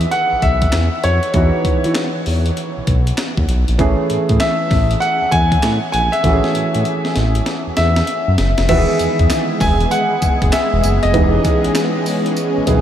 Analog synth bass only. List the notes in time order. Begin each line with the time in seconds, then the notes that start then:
0.32 B1
0.43 B1
0.74 E2
1.04 F2
1.34 E2
1.65 E3
1.85 E3
2.27 E2
2.77 B1
2.88 B1
3.38 D#2
3.49 B1
3.69 A#1
3.79 A1
4.10 A2
4.30 A2
4.71 A1
5.22 E2
5.33 E2
5.63 A2
5.94 A#1
6.24 A1
6.55 A2
6.75 A2
7.17 A1
7.67 E2
7.78 E2
8.28 F#2
8.39 F#1
8.59 F1
8.69 E1
9.00 E2
9.20 E2
9.61 E1
10.23 F#1
10.42 F#1
10.73 E1
10.84 F#1
11.04 F1
11.14 E1
11.66 B1
12.57 B1
12.68 B1